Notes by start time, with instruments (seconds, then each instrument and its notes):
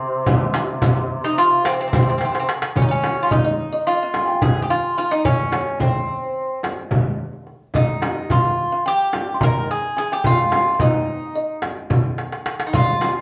Already playing: duduk C3, bouzouki C4
0.26 riq, darbuka dum, frame drum
0.54 riq, darbuka tek, frame drum
0.82 riq, darbuka dum, frame drum
0.96 riq, darbuka ka
1.24 bouzouki D#4
1.37 bouzouki F4, riq, darbuka ka
1.65 bouzouki C4, riq, darbuka tek
1.74 bouzouki C4
1.81 bouzouki C4
1.88 bouzouki C4
1.93 bouzouki C4, riq, darbuka dum, frame drum
2.03 bouzouki C4
2.10 bouzouki C4
2.18 bouzouki C4, riq, darbuka tek
2.25 bouzouki C4
2.32 bouzouki C4, riq, darbuka ka
2.40 bouzouki C4
2.49 darbuka tek
2.62 darbuka ka
2.76 bouzouki C#4, kalimba C#5, frame drum, darbuka dum
2.82 bouzouki D#4
2.89 bouzouki C#4, kalimba C#5
3.03 darbuka tek, frame drum
3.23 bouzouki F4
3.31 bouzouki D#4, kalimba D#5, darbuka dum, frame drum
3.38 kalimba F5
3.45 kalimba D#5, darbuka ka
3.73 kalimba D#5
3.87 bouzouki F4, kalimba F5
3.95 kalimba D#5
4.03 kalimba F5
4.14 darbuka tek, frame drum
4.26 kalimba G5 G#5
4.42 bouzouki G#4, kalimba G#5, darbuka dum, frame drum
4.62 bouzouki G4
4.70 bouzouki F4, kalimba F5
4.83 darbuka ka
4.97 bouzouki F4, kalimba F5, darbuka ka
5.11 bouzouki D#4, kalimba D#5
5.25 bouzouki C#4, kalimba C#5, frame drum, darbuka dum
5.52 darbuka tek, frame drum
5.80 bouzouki C4, kalimba C5, frame drum, darbuka dum
5.95 darbuka ka
6.63 darbuka tek, frame drum
6.91 frame drum, darbuka dum
7.33 darbuka ka
7.47 darbuka ka
7.74 bouzouki D#4, kalimba D#5, frame drum, darbuka dum
8.02 darbuka tek, frame drum
8.30 bouzouki F4, kalimba F5, frame drum, darbuka dum
8.44 darbuka ka
8.72 kalimba F5
8.86 bouzouki G4, kalimba G5
9.13 darbuka tek, frame drum
9.34 kalimba C6
9.41 bouzouki A#4, kalimba A#5, darbuka dum, frame drum
9.71 bouzouki G#4
9.82 darbuka ka
9.97 bouzouki G#4, kalimba G#5, darbuka ka
10.12 bouzouki G4, kalimba G5
10.24 bouzouki F4, kalimba F5, darbuka dum, frame drum
10.52 darbuka tek, frame drum
10.74 kalimba F5
10.79 bouzouki D#4, kalimba D#5, frame drum, darbuka dum
10.94 darbuka ka
11.35 kalimba D#5, darbuka ka
11.62 darbuka tek, frame drum
11.90 frame drum, darbuka dum
12.18 darbuka tek
12.32 darbuka ka
12.46 darbuka tek
12.60 darbuka ka
12.67 bouzouki D#4
12.73 bouzouki F4, kalimba F5, riq, frame drum, darbuka dum
13.01 riq, darbuka tek, frame drum